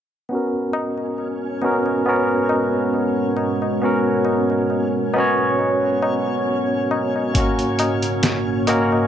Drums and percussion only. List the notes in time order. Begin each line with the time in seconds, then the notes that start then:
0.29 tabla na
0.73 tabla na
0.98 tabla na
1.18 tabla na
1.62 tabla na
1.86 tabla na
2.05 tabla na
2.49 tabla na
2.73 tabla na
2.94 tabla na
3.37 tabla na
3.62 tabla na
3.82 tabla na
4.25 tabla na
4.50 tabla na
4.70 tabla na
5.14 tabla na
5.38 tabla na
5.59 tabla na
6.02 tabla na
6.27 tabla na
6.47 tabla na
6.91 tabla na
7.16 tabla na
7.35 kick, closed hi-hat, tabla na
7.59 closed hi-hat
7.79 closed hi-hat, tabla na
8.02 closed hi-hat, tabla na
8.23 snare, closed hi-hat, tabla na
8.67 closed hi-hat, tabla na
8.92 tabla na